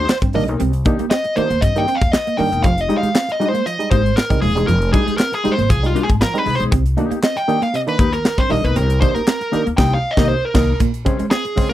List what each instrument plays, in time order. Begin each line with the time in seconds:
0.09 lead electric guitar C5, muted clean electric guitar stroke, snare, clap
0.22 upright bass G2, clean electric guitar C4, muted clean electric guitar stroke, kick, closed hi-hat
0.33 upright bass A#1, clav D#3 A#3 D4, clean electric guitar G3 A#3 D#4 A#4, lead electric guitar D#5, open hi-hat
0.48 upright bass B1, clean electric guitar A#3 D#4 A#4, closed hi-hat
0.60 upright bass C2, clav C3, clean electric guitar C4, closed hi-hat
0.73 closed hi-hat
0.85 clav D#3 A#3 D4, clean electric guitar A#3 D#4 G4, muted clean electric guitar stroke, kick, closed hi-hat
0.99 clean electric guitar A#3, clav A#3 D4, muted upright bass stroke, closed hi-hat
1.10 clean electric guitar C4, lead electric guitar D#5, muted clean electric guitar stroke, snare, clap
1.24 muted clean electric guitar stroke, closed hi-hat
1.36 clav D#3 A#3 D4, clean electric guitar A#3 D#4 G4, lead electric guitar C5, muted upright bass stroke, closed hi-hat
1.50 upright bass D#2, clean electric guitar A#3, muted clean electric guitar stroke, closed hi-hat
1.61 upright bass G2, clav C3, lead electric guitar D#5, muted clean electric guitar stroke, kick, closed hi-hat
1.76 clav D#3 A#3 D4, clean electric guitar A#3 D#4 G4, lead electric guitar G5, closed hi-hat
1.88 clav A#3 D4, clean electric guitar C4, muted clean electric guitar stroke, closed hi-hat
1.95 lead electric guitar F5
2.01 upright bass D#2, muted clean electric guitar stroke, kick, closed hi-hat
2.12 lead electric guitar D#5, muted clean electric guitar stroke, snare, clap
2.26 clean electric guitar A#3, muted clean electric guitar stroke, closed hi-hat
2.37 upright bass G2, clav D#3 A#3 D4, clean electric guitar G3 A#3 D#4 A#4, lead electric guitar G5, open hi-hat
2.51 upright bass E1, clean electric guitar A#3 D#4 A#4, closed hi-hat
2.63 upright bass F1, clav F3, clean electric guitar F3, lead electric guitar F5, kick, closed hi-hat
2.78 lead electric guitar D#5, closed hi-hat
2.88 clav G3 G#3 D#4, clean electric guitar G#3 D#4 G4, muted clean electric guitar stroke, closed hi-hat
2.97 lead electric guitar F5
3.03 clean electric guitar G#3, clav G#3 D#4, muted upright bass stroke, closed hi-hat
3.14 clean electric guitar C4, muted clean electric guitar stroke, snare, clap
3.28 lead electric guitar D#5, muted clean electric guitar stroke, closed hi-hat
3.40 clav G3 G#3 D#4, clean electric guitar G#3 D#4 G4, closed hi-hat
3.48 lead electric guitar C5
3.54 clean electric guitar A#3, muted clean electric guitar stroke, closed hi-hat
3.66 clav F3, lead electric guitar D#5, muted clean electric guitar stroke, closed hi-hat
3.79 clav G3 G#3 D#4, muted clean electric guitar stroke, closed hi-hat
3.91 upright bass G#1, clean electric guitar G#3 A#3 D#4 G4, lead electric guitar C5, kick, closed hi-hat
4.04 muted clean electric guitar stroke, closed hi-hat
4.16 lead electric guitar A#4, muted clean electric guitar stroke, snare, clap
4.30 upright bass C2, clav G3 G#3 D#4, clean electric guitar C4, muted clean electric guitar stroke, kick, closed hi-hat
4.41 upright bass D#1, clav F3, clean electric guitar G#3 D#4 G#4, lead electric guitar G#4, open hi-hat
4.55 upright bass E1, clav G3 G#3 D#4, clean electric guitar G#3 D#4 G#4, closed hi-hat
4.67 upright bass F1, clean electric guitar F3, clav F3, lead electric guitar A#4, closed hi-hat
4.82 closed hi-hat
4.92 clav G3 G#3 D#4, clean electric guitar G#3 D#4 G4, lead electric guitar G#4, muted clean electric guitar stroke, kick, closed hi-hat
5.07 clean electric guitar G#3, clav G#3 D#4, muted upright bass stroke, closed hi-hat
5.17 clean electric guitar C4, lead electric guitar A#4, muted clean electric guitar stroke, snare, clap
5.32 lead electric guitar G#4, muted clean electric guitar stroke, closed hi-hat
5.44 clav G3 G#3 D#4, clean electric guitar G#3 D#4 G4, muted upright bass stroke, closed hi-hat
5.52 lead electric guitar C5
5.57 upright bass G#1, clean electric guitar A#3, muted clean electric guitar stroke, closed hi-hat
5.69 upright bass C2, clav F3, lead electric guitar G#4, muted clean electric guitar stroke, kick, closed hi-hat
5.83 clav G3 G#3 D#4, lead electric guitar F4, muted clean electric guitar stroke, closed hi-hat
5.95 clean electric guitar G#3 A#3 D#4 G4, clav G#3 D#4, closed hi-hat
6.03 lead electric guitar G#4
6.08 upright bass G#1, muted clean electric guitar stroke, kick, closed hi-hat
6.20 clav F3, lead electric guitar A#4, muted clean electric guitar stroke, snare, clap
6.34 clav G3 G#3 D#4, clean electric guitar C4, muted clean electric guitar stroke, closed hi-hat
6.38 lead electric guitar B4
6.45 upright bass C2, clean electric guitar G#3 D#4 G#4, clav G#3 D#4, open hi-hat
6.55 clean electric guitar G#4, lead electric guitar C5
6.60 upright bass B1, clean electric guitar G#3 D#4, closed hi-hat
6.71 upright bass C2, clav C3, clean electric guitar C4, kick, closed hi-hat
6.86 closed hi-hat
6.97 clav D#3 A#3 D4, clean electric guitar A#3 D#4 G4, muted clean electric guitar stroke, closed hi-hat
7.11 clav A#3 D4, clean electric guitar A#3, muted upright bass stroke, closed hi-hat
7.23 clean electric guitar C4, lead electric guitar D#5, muted clean electric guitar stroke, snare, clap
7.36 lead electric guitar G5, muted clean electric guitar stroke, closed hi-hat
7.48 clav D#3 A#3 D4, clean electric guitar A#3 D#4 G4, closed hi-hat
7.61 clean electric guitar A#3, lead electric guitar F5, muted clean electric guitar stroke, closed hi-hat
7.74 clav C3, lead electric guitar D#5, muted clean electric guitar stroke, closed hi-hat
7.87 clav D#3 A#3 D4, lead electric guitar B4, muted clean electric guitar stroke, closed hi-hat
7.99 upright bass D#2, clean electric guitar A#3 D#4 G4, kick, closed hi-hat
8.13 lead electric guitar A#4, muted clean electric guitar stroke, closed hi-hat
8.25 muted clean electric guitar stroke, snare, clap
8.38 upright bass G2, clean electric guitar C4, lead electric guitar C5, muted clean electric guitar stroke, kick, closed hi-hat
8.50 upright bass A#1, clav D#3 A#3 D4, clean electric guitar G3 A#3 D#4 A#4, lead electric guitar D#5, open hi-hat
8.63 upright bass B1, clean electric guitar A#3 D#4 A#4, lead electric guitar B4, closed hi-hat
8.76 upright bass C2, clav C3, clean electric guitar C4, lead electric guitar A#4, closed hi-hat
8.90 closed hi-hat
9.01 clav D#3 A#3 D4, clean electric guitar A#3 D#4 G4, lead electric guitar C5, muted clean electric guitar stroke, kick, closed hi-hat
9.14 clav A#3 D4, clean electric guitar A#3, lead electric guitar A#4, muted upright bass stroke, closed hi-hat
9.27 clean electric guitar C4, muted clean electric guitar stroke, snare, clap
9.40 muted clean electric guitar stroke, closed hi-hat
9.52 clav D#3 A#3 D4, clean electric guitar A#3 D#4 G4, muted upright bass stroke, snare, closed hi-hat
9.66 upright bass D#2, clean electric guitar A#3, muted clean electric guitar stroke, closed hi-hat
9.77 upright bass C2, clean electric guitar A#3 D#4 G4, lead electric guitar G5, kick, snare, crash
9.94 lead electric guitar F5
10.11 lead electric guitar D#5
10.17 upright bass C2, clav D#3 A#3, clean electric guitar A#3 D#4 G4, kick, snare
10.28 lead electric guitar C5
10.45 lead electric guitar A#4
10.54 upright bass C2, clav D#3 A#3, clean electric guitar A#3 D#4 A#4, kick, snare, crash
10.80 upright bass A#1, clav A#2, clean electric guitar A#3, kick, closed hi-hat
10.94 closed hi-hat
11.05 clav C#3 G#3 C4, clean electric guitar C#4 G#4 C5, muted clean electric guitar stroke, kick, closed hi-hat
11.19 clav G#3 C4, clean electric guitar G#3, muted upright bass stroke, closed hi-hat
11.31 clean electric guitar C4, lead electric guitar G#4, snare
11.44 muted clean electric guitar stroke, closed hi-hat
11.56 clav C#3 G#3 C4, clean electric guitar C#4 G#4 C5, kick, snare, open hi-hat
11.69 lead electric guitar C5, muted clean electric guitar stroke